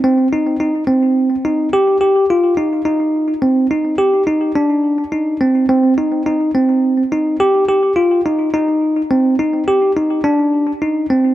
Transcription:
\new Staff \with { instrumentName = "Tine electric piano" } { \time 5/4 \key c \minor \tempo 4 = 106 c'8 ees'8 ees'8 c'4 ees'8 g'8 g'8 f'8 ees'8 | ees'4 c'8 ees'8 g'8 ees'8 d'4 ees'8 c'8 | c'8 ees'8 ees'8 c'4 ees'8 g'8 g'8 f'8 ees'8 | ees'4 c'8 ees'8 g'8 ees'8 d'4 ees'8 c'8 | }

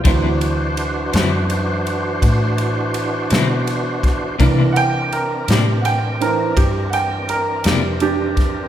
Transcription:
<<
  \new Staff \with { instrumentName = "Upright piano" } { \time 12/8 \key d \dorian \tempo 4. = 55 <e fis c''>1. | <e bes d'>8 <fis'' g''>8 bes'8 g'8 <fis'' g''>8 <e c' d' bes'>8 g'8 <fis'' g''>8 bes'8 g'8 <d' g'>4 | }
  \new Staff \with { instrumentName = "Tonewheel organ" } { \time 12/8 \key d \dorian <e d' fis' c''>1. | <e c' d' bes'>1. | }
  \new Staff \with { instrumentName = "Clean electric guitar" } { \time 12/8 \key d \dorian <d fis c' e'>8 r4 <d fis c' e'>8 r2 r8 <d fis c' e'>8 r4 | <c bes d' e'>8 r4 <c bes d' e'>8 r2 r8 <c bes d' e'>8 r4 | }
  \new Staff \with { instrumentName = "Fingered electric bass" } { \clef bass \time 12/8 \key d \dorian d,4. fis,4. a,4. b,4. | c4. a,4. g,4. f,4. | }
  \new DrumStaff \with { instrumentName = "Drums" } \drummode { \time 12/8 <bd cymr>8 cymr8 cymr8 <cymr sn>8 cymr8 cymr8 <bd cymr>8 cymr8 cymr8 <cymr sn>8 cymr8 <bd cymr sn>8 | <bd cymr>8 cymr8 cymr8 <cymr sn>8 cymr8 cymr8 <bd cymr>8 cymr8 cymr8 <cymr sn>8 cymr8 <bd cymr sn>8 | }
>>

